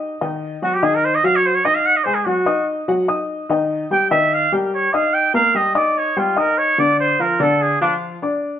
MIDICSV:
0, 0, Header, 1, 3, 480
1, 0, Start_track
1, 0, Tempo, 410678
1, 248, Time_signature, 4, 2, 24, 8
1, 10047, End_track
2, 0, Start_track
2, 0, Title_t, "Muted trumpet"
2, 0, Program_c, 0, 59
2, 742, Note_on_c, 0, 66, 75
2, 865, Note_on_c, 0, 67, 81
2, 883, Note_off_c, 0, 66, 0
2, 980, Note_on_c, 0, 68, 87
2, 997, Note_off_c, 0, 67, 0
2, 1111, Note_on_c, 0, 70, 77
2, 1129, Note_off_c, 0, 68, 0
2, 1225, Note_on_c, 0, 72, 88
2, 1242, Note_off_c, 0, 70, 0
2, 1345, Note_on_c, 0, 75, 83
2, 1363, Note_off_c, 0, 72, 0
2, 1463, Note_on_c, 0, 77, 116
2, 1480, Note_off_c, 0, 75, 0
2, 1586, Note_on_c, 0, 73, 90
2, 1604, Note_off_c, 0, 77, 0
2, 1705, Note_on_c, 0, 72, 89
2, 1722, Note_off_c, 0, 73, 0
2, 1812, Note_on_c, 0, 73, 86
2, 1830, Note_off_c, 0, 72, 0
2, 1929, Note_on_c, 0, 75, 104
2, 1946, Note_off_c, 0, 73, 0
2, 2045, Note_on_c, 0, 77, 94
2, 2063, Note_off_c, 0, 75, 0
2, 2172, Note_on_c, 0, 78, 109
2, 2189, Note_off_c, 0, 77, 0
2, 2296, Note_on_c, 0, 75, 83
2, 2314, Note_off_c, 0, 78, 0
2, 2389, Note_on_c, 0, 72, 103
2, 2406, Note_off_c, 0, 75, 0
2, 2512, Note_on_c, 0, 68, 75
2, 2530, Note_off_c, 0, 72, 0
2, 2634, Note_on_c, 0, 66, 70
2, 2651, Note_off_c, 0, 68, 0
2, 3121, Note_off_c, 0, 66, 0
2, 4584, Note_on_c, 0, 79, 95
2, 4795, Note_off_c, 0, 79, 0
2, 4802, Note_on_c, 0, 76, 101
2, 5070, Note_on_c, 0, 77, 110
2, 5087, Note_off_c, 0, 76, 0
2, 5299, Note_off_c, 0, 77, 0
2, 5319, Note_on_c, 0, 70, 62
2, 5506, Note_off_c, 0, 70, 0
2, 5543, Note_on_c, 0, 73, 83
2, 5769, Note_on_c, 0, 77, 96
2, 5786, Note_off_c, 0, 73, 0
2, 6007, Note_on_c, 0, 79, 103
2, 6024, Note_off_c, 0, 77, 0
2, 6244, Note_off_c, 0, 79, 0
2, 6251, Note_on_c, 0, 77, 104
2, 6500, Note_on_c, 0, 75, 88
2, 6517, Note_off_c, 0, 77, 0
2, 6721, Note_off_c, 0, 75, 0
2, 6728, Note_on_c, 0, 74, 93
2, 6990, Note_on_c, 0, 73, 83
2, 7008, Note_off_c, 0, 74, 0
2, 7227, Note_on_c, 0, 65, 76
2, 7245, Note_off_c, 0, 73, 0
2, 7466, Note_on_c, 0, 70, 83
2, 7483, Note_off_c, 0, 65, 0
2, 7694, Note_on_c, 0, 73, 97
2, 7712, Note_off_c, 0, 70, 0
2, 7942, Note_on_c, 0, 74, 108
2, 7960, Note_off_c, 0, 73, 0
2, 8175, Note_off_c, 0, 74, 0
2, 8182, Note_on_c, 0, 72, 95
2, 8425, Note_on_c, 0, 70, 82
2, 8442, Note_off_c, 0, 72, 0
2, 8680, Note_on_c, 0, 69, 85
2, 8697, Note_off_c, 0, 70, 0
2, 8904, Note_on_c, 0, 68, 85
2, 8922, Note_off_c, 0, 69, 0
2, 9126, Note_off_c, 0, 68, 0
2, 9133, Note_on_c, 0, 62, 93
2, 9275, Note_off_c, 0, 62, 0
2, 10047, End_track
3, 0, Start_track
3, 0, Title_t, "Upright piano"
3, 0, Program_c, 1, 0
3, 0, Note_on_c, 1, 63, 64
3, 0, Note_on_c, 1, 75, 70
3, 0, Note_on_c, 1, 87, 69
3, 161, Note_off_c, 1, 63, 0
3, 163, Note_off_c, 1, 87, 0
3, 165, Note_off_c, 1, 75, 0
3, 249, Note_on_c, 1, 75, 78
3, 251, Note_on_c, 1, 51, 78
3, 255, Note_on_c, 1, 63, 78
3, 642, Note_off_c, 1, 75, 0
3, 643, Note_off_c, 1, 51, 0
3, 645, Note_off_c, 1, 63, 0
3, 727, Note_on_c, 1, 54, 71
3, 731, Note_on_c, 1, 66, 71
3, 734, Note_on_c, 1, 78, 73
3, 924, Note_off_c, 1, 54, 0
3, 926, Note_off_c, 1, 66, 0
3, 928, Note_off_c, 1, 78, 0
3, 964, Note_on_c, 1, 51, 83
3, 966, Note_on_c, 1, 63, 88
3, 971, Note_on_c, 1, 75, 87
3, 1359, Note_off_c, 1, 51, 0
3, 1360, Note_off_c, 1, 63, 0
3, 1363, Note_off_c, 1, 75, 0
3, 1445, Note_on_c, 1, 54, 79
3, 1450, Note_on_c, 1, 66, 76
3, 1452, Note_on_c, 1, 78, 81
3, 1839, Note_off_c, 1, 54, 0
3, 1843, Note_off_c, 1, 66, 0
3, 1844, Note_off_c, 1, 78, 0
3, 1930, Note_on_c, 1, 63, 73
3, 1930, Note_on_c, 1, 75, 75
3, 1932, Note_on_c, 1, 87, 70
3, 2323, Note_off_c, 1, 63, 0
3, 2323, Note_off_c, 1, 75, 0
3, 2324, Note_off_c, 1, 87, 0
3, 2403, Note_on_c, 1, 56, 74
3, 2410, Note_on_c, 1, 68, 70
3, 2410, Note_on_c, 1, 80, 76
3, 2602, Note_off_c, 1, 56, 0
3, 2606, Note_off_c, 1, 68, 0
3, 2606, Note_off_c, 1, 80, 0
3, 2644, Note_on_c, 1, 54, 73
3, 2648, Note_on_c, 1, 66, 78
3, 2650, Note_on_c, 1, 78, 72
3, 2842, Note_off_c, 1, 54, 0
3, 2844, Note_off_c, 1, 66, 0
3, 2846, Note_off_c, 1, 78, 0
3, 2879, Note_on_c, 1, 75, 77
3, 2880, Note_on_c, 1, 63, 78
3, 2882, Note_on_c, 1, 87, 76
3, 3276, Note_off_c, 1, 63, 0
3, 3276, Note_off_c, 1, 75, 0
3, 3278, Note_off_c, 1, 87, 0
3, 3367, Note_on_c, 1, 54, 80
3, 3367, Note_on_c, 1, 66, 76
3, 3373, Note_on_c, 1, 78, 83
3, 3564, Note_off_c, 1, 54, 0
3, 3564, Note_off_c, 1, 66, 0
3, 3568, Note_off_c, 1, 78, 0
3, 3603, Note_on_c, 1, 75, 72
3, 3605, Note_on_c, 1, 63, 66
3, 3608, Note_on_c, 1, 87, 73
3, 3999, Note_off_c, 1, 75, 0
3, 4000, Note_off_c, 1, 63, 0
3, 4001, Note_off_c, 1, 87, 0
3, 4084, Note_on_c, 1, 51, 87
3, 4090, Note_on_c, 1, 63, 86
3, 4096, Note_on_c, 1, 75, 79
3, 4479, Note_off_c, 1, 51, 0
3, 4482, Note_off_c, 1, 63, 0
3, 4487, Note_off_c, 1, 75, 0
3, 4564, Note_on_c, 1, 55, 72
3, 4571, Note_on_c, 1, 67, 73
3, 4575, Note_on_c, 1, 79, 77
3, 4763, Note_off_c, 1, 55, 0
3, 4766, Note_off_c, 1, 67, 0
3, 4769, Note_off_c, 1, 79, 0
3, 4804, Note_on_c, 1, 51, 93
3, 4808, Note_on_c, 1, 75, 93
3, 4811, Note_on_c, 1, 63, 88
3, 5199, Note_off_c, 1, 51, 0
3, 5202, Note_off_c, 1, 75, 0
3, 5203, Note_off_c, 1, 63, 0
3, 5285, Note_on_c, 1, 55, 83
3, 5288, Note_on_c, 1, 67, 85
3, 5296, Note_on_c, 1, 79, 80
3, 5680, Note_off_c, 1, 55, 0
3, 5682, Note_off_c, 1, 67, 0
3, 5686, Note_off_c, 1, 79, 0
3, 5769, Note_on_c, 1, 63, 74
3, 5772, Note_on_c, 1, 75, 77
3, 5777, Note_on_c, 1, 87, 78
3, 6162, Note_off_c, 1, 63, 0
3, 6164, Note_off_c, 1, 75, 0
3, 6167, Note_off_c, 1, 87, 0
3, 6240, Note_on_c, 1, 58, 75
3, 6244, Note_on_c, 1, 70, 70
3, 6245, Note_on_c, 1, 82, 77
3, 6440, Note_off_c, 1, 58, 0
3, 6443, Note_off_c, 1, 70, 0
3, 6443, Note_off_c, 1, 82, 0
3, 6481, Note_on_c, 1, 55, 71
3, 6484, Note_on_c, 1, 67, 74
3, 6488, Note_on_c, 1, 79, 73
3, 6681, Note_off_c, 1, 55, 0
3, 6682, Note_off_c, 1, 67, 0
3, 6685, Note_off_c, 1, 79, 0
3, 6718, Note_on_c, 1, 63, 75
3, 6723, Note_on_c, 1, 75, 78
3, 6724, Note_on_c, 1, 87, 82
3, 7116, Note_off_c, 1, 63, 0
3, 7119, Note_off_c, 1, 75, 0
3, 7119, Note_off_c, 1, 87, 0
3, 7205, Note_on_c, 1, 67, 79
3, 7206, Note_on_c, 1, 55, 86
3, 7211, Note_on_c, 1, 79, 79
3, 7403, Note_off_c, 1, 67, 0
3, 7404, Note_off_c, 1, 55, 0
3, 7407, Note_off_c, 1, 79, 0
3, 7438, Note_on_c, 1, 63, 70
3, 7441, Note_on_c, 1, 75, 71
3, 7450, Note_on_c, 1, 87, 68
3, 7835, Note_off_c, 1, 63, 0
3, 7837, Note_off_c, 1, 75, 0
3, 7843, Note_off_c, 1, 87, 0
3, 7927, Note_on_c, 1, 50, 79
3, 7932, Note_on_c, 1, 62, 88
3, 7933, Note_on_c, 1, 74, 76
3, 8321, Note_off_c, 1, 50, 0
3, 8324, Note_off_c, 1, 62, 0
3, 8325, Note_off_c, 1, 74, 0
3, 8409, Note_on_c, 1, 53, 77
3, 8412, Note_on_c, 1, 65, 71
3, 8417, Note_on_c, 1, 77, 70
3, 8605, Note_off_c, 1, 53, 0
3, 8607, Note_off_c, 1, 65, 0
3, 8610, Note_off_c, 1, 77, 0
3, 8646, Note_on_c, 1, 50, 92
3, 8646, Note_on_c, 1, 62, 87
3, 8649, Note_on_c, 1, 74, 92
3, 9040, Note_off_c, 1, 50, 0
3, 9040, Note_off_c, 1, 62, 0
3, 9042, Note_off_c, 1, 74, 0
3, 9128, Note_on_c, 1, 53, 85
3, 9135, Note_on_c, 1, 65, 79
3, 9137, Note_on_c, 1, 77, 83
3, 9521, Note_off_c, 1, 53, 0
3, 9525, Note_off_c, 1, 65, 0
3, 9527, Note_off_c, 1, 77, 0
3, 9611, Note_on_c, 1, 62, 73
3, 9617, Note_on_c, 1, 74, 70
3, 9620, Note_on_c, 1, 86, 74
3, 10002, Note_off_c, 1, 62, 0
3, 10006, Note_off_c, 1, 74, 0
3, 10008, Note_off_c, 1, 86, 0
3, 10047, End_track
0, 0, End_of_file